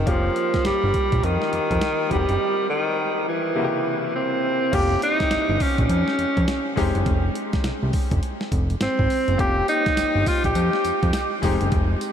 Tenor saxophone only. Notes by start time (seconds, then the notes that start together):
Already playing: D#3
0.09 F3
0.66 G3
1.24 D#3
2.12 G3
2.70 D#3
3.28 E3
4.16 C4
4.74 G4
5.03 D#4
5.62 C#4
5.80 C#4
8.82 C4
9.40 G4
9.69 D#4
10.27 F4
10.45 G4